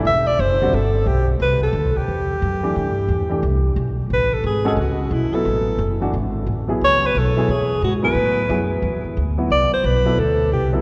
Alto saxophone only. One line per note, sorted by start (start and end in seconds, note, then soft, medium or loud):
0.07 0.29 E5 loud
0.27 0.42 D5 medium
0.40 0.76 C5 loud
0.75 1.09 A4 medium
1.07 1.28 G4 medium
1.42 1.61 B4 medium
1.63 1.99 A4 medium
1.97 3.78 G4 medium
4.14 4.35 B4 loud
4.34 4.45 A4 medium
4.47 4.65 G#4 medium
4.68 4.73 G#4 medium
4.80 5.14 F#4 medium
5.13 5.36 E4 medium
5.34 6.01 A4 medium
6.85 7.08 C#5 loud
7.06 7.20 B4 medium
7.19 7.52 A4 medium
7.51 7.83 G#4 medium
7.84 7.93 F#4 medium
8.04 8.67 B4 medium
9.52 9.71 D5 loud
9.74 9.88 C5 medium
9.86 10.21 B4 medium
10.19 10.53 A4 loud
10.53 10.72 G4 medium